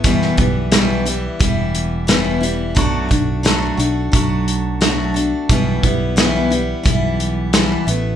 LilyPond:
<<
  \new Staff \with { instrumentName = "Steel-string acoustic guitar" } { \time 4/4 \key e \minor \tempo 4 = 88 <e, b, e g b e'>8 <e g b e'>8 <e, b, e g b e'>8 <e g b e'>8 <e g b e'>4 <e, b, e g b e'>8 <e g b e'>8 | <b, fis a d' fis'>8 <a d' fis'>8 <b, fis a d' fis'>8 <a d' fis'>8 <fis a d' fis'>4 <b, fis a d' fis'>8 <a d' fis'>8 | <b, e g b e'>8 <g b e'>8 <b, e g b e'>8 <g b e'>8 <e g b e'>4 <b, e g b e'>8 <a b e'>8 | }
  \new Staff \with { instrumentName = "Fingered electric bass" } { \clef bass \time 4/4 \key e \minor e,,8 b,,4. e,,2 | b,,8 b,,4 b,,8 b,,2 | b,,8 b,,4. b,,4. a,,8 | }
  \new DrumStaff \with { instrumentName = "Drums" } \drummode { \time 4/4 <hh bd>16 sn16 <hh bd>8 <hh sn>8 hh8 <hh bd>8 hh8 <hh sn>8 hh8 | <hh bd>8 <hh bd>8 <hh sn>8 hh8 <hh bd>8 hh8 <hh sn>8 hh8 | <hh bd>8 <hh bd>8 <hh sn>8 hh8 <hh bd>8 hh8 <hh sn>8 hh8 | }
>>